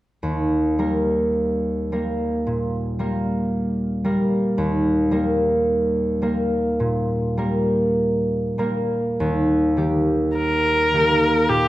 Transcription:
0.23 harp D#2
0.79 harp G3 A#3 A#4
1.92 harp G3 A#3 A#4
2.47 harp A#2
2.99 harp G3 A#3 A#4
4.04 harp G3 A#3 A#4
4.58 harp D#2
5.11 harp G3 A#3 A#4
6.22 harp G3 A#3 A#4
6.80 harp A#2
7.37 harp G3 A#3 A#4
8.58 harp G3 A#3 A#4
9.20 harp D#2
9.77 harp D#3 A#3 G4
10.37 viola A#4
10.93 harp D#3 A#3 G4
11.49 harp A#2, viola G4

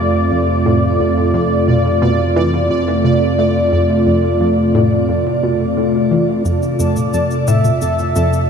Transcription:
Already playing: synth arpeggio sound F2, sub bass F2, analog synth pad C3 A3 F4 D5, synth texture D5
0.32 synth arpeggio sound F2
0.66 synth arpeggio sound A2
1.00 synth arpeggio sound F2
1.34 synth arpeggio sound F2
1.68 synth arpeggio sound B2
2.02 synth arpeggio sound B2
2.36 synth arpeggio sound E3
2.70 synth arpeggio sound F2
3.04 synth arpeggio sound C3
3.39 synth arpeggio sound A3
3.73 synth arpeggio sound F2
4.07 synth arpeggio sound F2
4.41 synth arpeggio sound F2
4.75 synth arpeggio sound A2
5.09 synth arpeggio sound F2
5.43 synth arpeggio sound B2
5.77 synth arpeggio sound A2
6.11 synth arpeggio sound E3
6.45 sub bass F2, synth arpeggio sound F2, synth texture A4 A5, cabasa
6.63 cabasa
6.79 synth arpeggio sound F2, soft synth lead D5, cabasa
6.96 high tom, cabasa
7.13 synth arpeggio sound F2, cabasa
7.31 cabasa
7.45 synth arpeggio sound A2, analog synth pad A4, soft synth lead E5, cabasa
7.64 high tom, cabasa
7.81 synth arpeggio sound F2, cabasa
7.99 cabasa
8.16 synth arpeggio sound F2, cabasa
8.33 cabasa

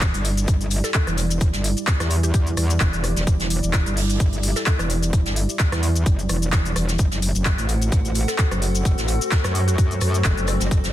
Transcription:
Already playing: wobble bass E1, analog synth pad G3 E4 D5
0.01 kick, snare, clap, closed hi-hat, cabasa, shaker
0.14 wobble bass G1, closed hi-hat, cabasa
0.25 open hi-hat, shaker
0.37 closed hi-hat, cabasa
0.48 wobble bass G1, kick, closed hi-hat, cabasa, shaker
0.61 closed hi-hat, cabasa
0.71 open hi-hat, shaker
0.84 synth pluck A4, snare, closed hi-hat, cabasa
0.94 synth pluck A4, kick, snare, clap, closed hi-hat, cabasa, shaker
1.07 wobble bass E1, cross-stick, closed hi-hat, cabasa
1.18 open hi-hat, shaker
1.30 closed hi-hat, cabasa
1.41 wobble bass E1, kick, closed hi-hat, cabasa, shaker
1.53 wobble bass G1, snare, closed hi-hat, cabasa
1.64 open hi-hat, shaker
1.77 closed hi-hat, cabasa
1.87 kick, snare, clap, closed hi-hat, cabasa, shaker
2.00 wobble bass E2, cross-stick, snare, closed hi-hat, cabasa
2.10 open hi-hat, shaker
2.23 synth pluck G4, closed hi-hat, cabasa
2.34 wobble bass E2, synth pluck G4, kick, closed hi-hat, cabasa, shaker
2.47 closed hi-hat, cabasa
2.57 wobble bass E2, cross-stick, open hi-hat, shaker
2.70 closed hi-hat, cabasa
2.80 wobble bass E1, kick, snare, clap, closed hi-hat, cabasa, shaker
2.93 wobble bass E1, closed hi-hat, cabasa
3.04 cross-stick, open hi-hat, shaker
3.16 wobble bass E1, snare, closed hi-hat, cabasa
3.27 wobble bass E1, kick, closed hi-hat, cabasa, shaker
3.40 wobble bass E1, snare, closed hi-hat, cabasa
3.50 open hi-hat, shaker
3.63 wobble bass E1, closed hi-hat, cabasa
3.73 kick, snare, clap, closed hi-hat, cabasa, shaker
3.86 wobble bass G1, closed hi-hat, cabasa
3.97 open hi-hat
4.10 closed hi-hat, cabasa
4.20 wobble bass G1, kick, closed hi-hat, cabasa, shaker
4.33 closed hi-hat, cabasa
4.43 open hi-hat, shaker
4.56 synth pluck A4, snare, closed hi-hat, cabasa
4.66 synth pluck A4, kick, snare, clap, closed hi-hat, cabasa, shaker
4.79 wobble bass E1, cross-stick, closed hi-hat, cabasa
4.90 open hi-hat, shaker
5.03 closed hi-hat, cabasa
5.13 wobble bass E1, kick, closed hi-hat, cabasa, shaker
5.26 wobble bass G1, snare, closed hi-hat, cabasa
5.36 open hi-hat, shaker
5.49 closed hi-hat, cabasa
5.59 kick, snare, clap, closed hi-hat, cabasa, shaker
5.72 wobble bass E2, cross-stick, snare, closed hi-hat, cabasa
5.83 open hi-hat, shaker
5.96 closed hi-hat, cabasa
6.06 wobble bass F#1, kick, closed hi-hat, cabasa, shaker
6.19 closed hi-hat, cabasa
6.29 wobble bass E1, cross-stick, open hi-hat, shaker
6.42 closed hi-hat, cabasa
6.52 kick, snare, clap, closed hi-hat, cabasa, shaker
6.65 closed hi-hat, cabasa
6.76 wobble bass E1, cross-stick, open hi-hat, shaker
6.88 snare, closed hi-hat, cabasa
6.99 wobble bass F#1, analog synth pad A3 F#4 C5, ambient pad C4, kick, closed hi-hat, cabasa, shaker
7.11 wobble bass F#1, ambient pad A4 F#5, snare, closed hi-hat, cabasa
7.22 open hi-hat, shaker
7.33 wobble bass F#1, ambient pad F#4, closed hi-hat, cabasa
7.45 kick, snare, clap, closed hi-hat, cabasa, shaker
7.58 wobble bass A1, closed hi-hat, cabasa
7.69 open hi-hat, shaker
7.82 closed hi-hat, cabasa
7.92 wobble bass A1, kick, closed hi-hat, cabasa, shaker
8.05 closed hi-hat, cabasa
8.15 open hi-hat, shaker
8.28 synth pluck A4, snare, closed hi-hat, cabasa
8.38 synth pluck A4, kick, snare, clap, closed hi-hat, cabasa, shaker
8.51 wobble bass F#1, cross-stick, closed hi-hat, cabasa
8.62 open hi-hat, shaker
8.75 closed hi-hat, cabasa
8.85 wobble bass F#1, kick, closed hi-hat, cabasa, shaker
8.98 wobble bass A1, snare, closed hi-hat, cabasa
9.08 open hi-hat, shaker
9.21 closed hi-hat, cabasa
9.32 kick, snare, clap, closed hi-hat, cabasa, shaker
9.44 wobble bass F#2, cross-stick, snare, closed hi-hat, cabasa
9.55 open hi-hat, shaker
9.68 synth pluck F#4, closed hi-hat, cabasa
9.78 wobble bass F#2, synth pluck F#4, kick, closed hi-hat, cabasa, shaker
9.91 closed hi-hat, cabasa
10.01 wobble bass F#2, cross-stick, open hi-hat, shaker
10.14 closed hi-hat, cabasa
10.25 wobble bass F#1, kick, snare, clap, closed hi-hat, cabasa, shaker
10.37 wobble bass F#1, closed hi-hat, cabasa
10.47 cross-stick, open hi-hat, shaker
10.60 wobble bass F#1, ambient pad E5, snare, closed hi-hat, cabasa
10.71 wobble bass F#1, analog synth pad E4, kick, closed hi-hat, cabasa, shaker
10.84 wobble bass F#1, snare, closed hi-hat, cabasa

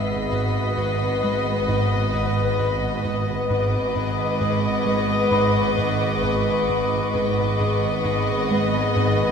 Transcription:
Already playing: synth drone G#1, double bass section G#1, analog synth bass G#2, cello section G#2, violin section B3 B4 D#5 B6 C7, synth texture F#4 B4 D#5
0.32 analog synth bass G#2
0.77 analog synth bass G#2
1.24 analog synth bass G#3
1.69 analog synth bass G#2
2.14 analog synth bass G#2
2.60 analog synth bass G#2
3.05 analog synth bass G#2
3.48 synth drone G#1, double bass section G#1, cello section G#2, analog synth bass G#2, violin section B3 B4 D#5 B5 D6, synth texture G#4 B4 D#5
3.96 analog synth bass G#2
4.40 analog synth bass G#2, violin section C#6
4.86 analog synth bass G#3
5.31 analog synth bass G#2, celesta B5
5.78 analog synth bass G#2
6.23 analog synth bass G#2
6.69 analog synth bass G#2
7.13 synth drone G#1, double bass section G#1, cello section G#2, analog synth bass G#2, violin section B3 B4 D#5, synth texture G#4 B4 D#5
7.61 analog synth bass G#2
8.05 analog synth bass G#2
8.51 analog synth bass G#3
8.96 analog synth bass G#2

